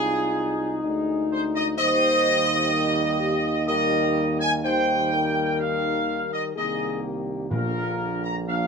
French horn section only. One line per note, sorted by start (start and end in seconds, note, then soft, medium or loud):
0.00 0.80 F4 medium
0.83 1.74 D#4 medium
1.77 2.68 C5 loud
2.72 3.20 A#4 medium
3.20 3.55 G4 medium
3.68 4.60 A#4 loud
4.64 5.09 C5 loud
5.12 6.51 A#4 loud
6.55 7.00 G#4 medium
7.03 7.47 G4 medium
7.50 8.42 F4 medium
8.46 8.67 D4 medium